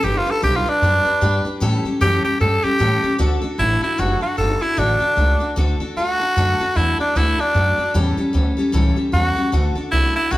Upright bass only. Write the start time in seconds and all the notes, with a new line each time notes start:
0.03 G1
0.27 muted upright bass stroke
0.43 B1
0.66 muted upright bass stroke
0.82 F#2
1.06 muted upright bass stroke
1.22 G2
1.45 muted upright bass stroke
1.62 A2
1.85 muted upright bass stroke
2.01 F#2
2.24 muted upright bass stroke
2.41 G2
2.64 muted upright bass stroke
2.80 A2
3.03 muted upright bass stroke
3.19 D2
3.43 muted upright bass stroke
3.59 A1
3.83 muted upright bass stroke
3.99 F#1
4.22 muted upright bass stroke
4.38 G1
4.78 A1
5.01 muted upright bass stroke
5.17 C#2
5.41 muted upright bass stroke
5.57 D2
5.80 muted upright bass stroke
5.96 E2
6.37 F#2
6.60 muted upright bass stroke
6.76 E2
6.99 muted upright bass stroke
7.16 D2
7.39 muted upright bass stroke
7.55 F#2
7.78 muted upright bass stroke
7.95 E2
8.18 muted upright bass stroke
8.34 D2
8.58 muted upright bass stroke
8.74 C#2
8.97 muted upright bass stroke
9.13 E2
9.37 muted upright bass stroke
9.53 D2
9.76 muted upright bass stroke
9.93 C2
10.16 muted upright bass stroke
10.32 B1